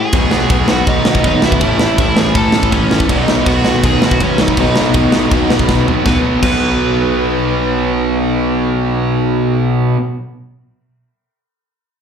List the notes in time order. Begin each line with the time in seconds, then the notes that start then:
Already playing: A2 E3 A3 G#4 G#5
0.13 B1 B2 D#3 F#3 B3, kick, crash
0.17 D#4
0.31 B1 B2 F#3 B3, snare
0.50 B1 B2 F#3 B3, kick, crash
0.68 B1 B2 F#3 B3 F#4 F#5, snare
0.87 B1 B2 F#3 B3 D#4 D#5, kick, crash
1.05 B1 B2 F#3 B3, snare
1.15 kick
1.24 B1 B2 F#3 B3 D#5, kick, crash
1.28 D#4
1.42 B1 B2 F#3 B3, snare
1.46 E4 E5
1.52 kick
1.60 A1 A2 E3 A3 C#4, kick, crash
1.65 E4
1.78 A1 A2 E3 A3, snare
1.98 A1 A2 E3 A3 E4 E5, kick, crash
2.16 A1 A2 E3 A3 G#4 G#5, snare
2.35 A1 A2 E3 A3 A4 A5, kick, crash
2.52 A1 A2 E3 A3, snare
2.63 kick
2.72 A1 A2 E3 A3 C#4 C#5, kick, crash
2.91 A1 A2 E3 A3, snare
3.00 kick
3.09 B1 B2 D#3 F#3 B3 D#4 D#5, kick, crash
3.28 B1 B2 F#3 B3, snare
3.46 B1 B2 F#3 B3 F#4 F#5, kick, crash
3.65 B1 B2 F#3 B3, snare
3.83 B1 B2 F#3 B3 G#4 G#5, kick, crash
4.02 B1 B2 F#3 B3 F#4 F#5, snare
4.11 kick
4.20 B1 B2 F#3 B3 C#4 C#5, kick, crash
4.38 B1 B2 F#3 B3 D#4 D#5, snare
4.48 kick
4.57 B1 B2 D#3 F#3 B3 D#4 D#5, kick, crash
4.62 D#4
4.76 B1 B2 F#3 B3, snare
4.94 B1 B2 F#3 B3, kick, crash
5.12 B1 B2 F#3 B3, snare
5.31 B1 B2 F#3 B3, kick, crash
5.49 B1 B2 F#3 B3, snare
5.59 kick
5.68 B1 B2 F#3 B3, kick, snare
5.87 B1 B2 F#3 B3, floor tom
6.04 B1 B2 F#3 B4, kick, snare
6.09 B3 D#4
6.42 B1 B2 F#3 B4, kick, crash
6.46 B3 D#4